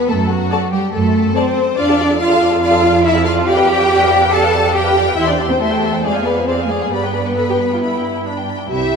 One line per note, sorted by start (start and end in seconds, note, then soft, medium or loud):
0.08 0.44 F#2 medium
0.08 0.30 A3 medium
0.08 0.30 A4 medium
0.29 0.72 F#3 medium
0.29 0.72 F#4 medium
0.51 0.59 A4 medium
0.51 0.59 D5 medium
0.51 0.59 A5 medium
0.72 0.93 G3 medium
0.72 0.93 G4 medium
0.93 1.29 F#2 medium
0.93 1.35 A3 medium
0.93 1.35 A4 medium
1.35 1.77 C4 medium
1.35 1.43 A4 medium
1.35 1.77 C5 medium
1.35 1.43 D5 medium
1.35 1.43 A5 medium
1.77 5.14 F2 medium
1.77 2.19 D4 medium
1.77 1.87 F4 medium
1.77 1.87 D5 medium
1.77 2.20 D5 medium
1.77 1.87 F5 medium
1.87 1.99 A4 medium
1.87 1.99 F5 medium
1.87 1.98 A5 medium
1.98 2.09 F4 medium
1.98 2.09 D5 soft
1.98 2.09 F5 medium
2.07 2.20 A4 soft
2.07 2.20 F5 soft
2.07 2.19 A5 medium
2.17 2.30 F4 medium
2.17 2.61 F4 medium
2.17 2.30 D5 medium
2.17 2.28 F5 medium
2.17 2.61 F5 medium
2.30 2.41 A4 medium
2.30 2.41 F5 medium
2.30 2.41 A5 soft
2.39 2.51 F4 medium
2.39 2.51 D5 soft
2.39 2.51 F5 medium
2.51 2.62 A4 medium
2.51 2.62 F5 medium
2.51 2.62 A5 soft
2.60 3.03 F4 medium
2.60 2.72 F4 medium
2.60 2.72 D5 medium
2.60 2.71 F5 medium
2.60 3.03 F5 medium
2.70 2.83 A4 soft
2.70 2.83 F5 medium
2.70 2.82 A5 medium
2.81 2.93 F4 medium
2.81 2.93 D5 medium
2.81 2.92 F5 medium
2.92 3.04 A4 medium
2.92 3.04 F5 medium
2.92 3.03 A5 medium
3.02 3.26 E4 medium
3.02 3.14 F4 medium
3.02 3.14 D5 medium
3.02 3.25 E5 medium
3.02 3.13 F5 medium
3.14 3.25 A4 soft
3.14 3.25 F5 medium
3.14 3.25 A5 soft
3.25 3.47 F4 medium
3.25 3.36 F4 soft
3.25 3.36 D5 medium
3.25 3.36 F5 medium
3.25 3.33 F5 medium
3.35 3.46 A4 medium
3.35 3.46 F5 medium
3.35 3.46 A5 soft
3.46 3.56 G4 medium
3.46 4.32 G4 loud
3.46 3.56 D5 medium
3.46 3.56 F5 medium
3.46 4.30 G5 medium
3.56 3.68 B4 soft
3.56 3.67 F5 medium
3.56 3.67 G5 medium
3.67 3.78 G4 soft
3.67 3.79 D5 medium
3.67 3.78 F5 soft
3.77 3.89 B4 soft
3.77 3.89 F5 soft
3.77 3.88 G5 medium
3.88 3.99 G4 medium
3.88 3.99 D5 medium
3.88 3.99 F5 medium
3.99 4.11 B4 soft
3.99 4.11 F5 soft
3.99 4.10 G5 medium
4.10 4.21 G4 medium
4.10 4.21 D5 medium
4.10 4.21 F5 medium
4.21 4.32 B4 soft
4.21 4.32 F5 medium
4.21 4.32 G5 medium
4.32 4.42 G4 medium
4.32 4.75 A4 medium
4.32 4.42 D5 medium
4.32 4.43 F5 medium
4.32 4.75 A5 medium
4.42 4.53 B4 soft
4.42 4.53 F5 medium
4.42 4.53 G5 medium
4.53 4.64 G4 medium
4.53 4.64 D5 medium
4.53 4.64 F5 soft
4.64 4.75 B4 medium
4.64 4.75 F5 medium
4.64 4.75 G5 medium
4.74 5.17 G4 medium
4.74 4.84 G4 medium
4.74 4.85 D5 medium
4.74 4.85 F5 medium
4.74 5.16 G5 medium
4.84 4.95 B4 soft
4.84 4.95 F5 soft
4.84 4.96 G5 soft
4.94 5.06 G4 soft
4.94 5.06 D5 medium
4.94 5.08 F5 medium
5.05 5.17 B4 soft
5.05 5.17 F5 soft
5.05 5.18 G5 soft
5.16 6.01 E2 medium
5.16 5.28 E4 medium
5.16 5.27 G4 medium
5.16 5.28 E5 medium
5.16 5.27 E5 medium
5.16 5.28 C6 medium
5.27 5.36 D4 medium
5.27 5.38 C5 soft
5.27 5.49 D5 medium
5.27 5.38 G5 soft
5.27 5.39 G5 soft
5.37 5.49 G4 medium
5.37 5.49 E5 soft
5.37 5.50 C6 soft
5.48 5.53 C4 medium
5.48 5.59 C5 soft
5.48 5.60 C5 medium
5.48 5.59 G5 soft
5.48 5.61 G5 soft
5.58 6.02 A3 medium
5.58 5.69 G4 soft
5.58 6.02 A4 medium
5.58 5.69 E5 soft
5.58 5.71 C6 medium
5.70 5.81 C5 soft
5.70 5.81 G5 soft
5.70 5.82 G5 soft
5.80 5.92 G4 soft
5.80 5.91 E5 soft
5.80 5.93 C6 soft
5.91 6.02 C5 soft
5.91 6.02 G5 soft
5.91 6.03 G5 soft
6.02 6.91 F2 medium
6.02 6.24 G#3 medium
6.02 6.13 G#4 soft
6.02 6.25 G#4 medium
6.02 6.12 D5 medium
6.02 6.14 F5 medium
6.13 6.24 C5 soft
6.13 6.25 F5 soft
6.13 6.26 G#5 soft
6.23 6.46 B3 medium
6.23 6.35 G#4 soft
6.23 6.47 B4 medium
6.23 6.35 D5 soft
6.23 6.36 F5 soft
6.35 6.46 C5 soft
6.35 6.46 F5 soft
6.35 6.47 G#5 soft
6.46 6.68 C4 medium
6.46 6.56 G#4 soft
6.46 6.55 C5 medium
6.46 6.57 D5 soft
6.46 6.57 F5 soft
6.58 6.69 C5 soft
6.58 6.69 F5 soft
6.58 6.70 G#5 soft
6.68 6.91 G#3 medium
6.68 6.79 G#4 soft
6.68 6.91 G#4 medium
6.68 6.79 D5 soft
6.68 6.81 F5 soft
6.80 6.91 C5 soft
6.80 6.91 F5 soft
6.80 6.92 G#5 soft
6.90 8.45 G2 medium
6.90 8.25 B3 medium
6.90 7.01 G4 soft
6.90 8.25 B4 medium
6.90 7.01 D5 soft
6.90 7.02 B5 soft
7.03 7.14 B4 soft
7.03 7.14 G5 soft
7.13 7.25 G4 soft
7.13 7.25 D5 soft
7.13 7.25 B5 soft
7.25 7.36 B4 soft
7.25 7.36 G5 soft
7.36 7.41 A4 medium
7.36 7.47 B5 soft
7.48 7.56 G4 soft
7.48 7.60 G5 soft
7.59 7.70 B5 soft
7.71 7.81 F4 soft
7.71 7.82 G5 soft
7.81 8.24 E4 medium
7.81 7.92 B5 soft
7.93 8.04 G5 soft
8.03 8.14 B5 soft
8.15 8.25 G5 soft
8.24 8.69 D4 soft
8.24 8.35 B5 soft
8.36 8.47 G5 soft
8.47 8.58 B5 soft
8.57 8.68 G5 soft
8.68 8.96 C2 medium
8.68 8.96 C3 medium
8.68 8.96 E4 medium
8.68 8.96 G4 medium
8.68 8.96 E5 medium